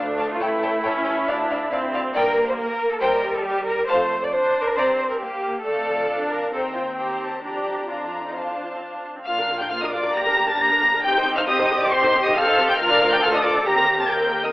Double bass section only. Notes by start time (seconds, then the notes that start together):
Already playing: D2
0.41 A1
0.84 A1
1.28 D2
1.72 D2
2.15 G2
3.02 D#2
3.88 F2
4.77 G2
5.65 F2
6.52 D#2
7.44 F2
9.26 A#1
10.15 G1
11.03 C2
12.78 D2
13.65 D#2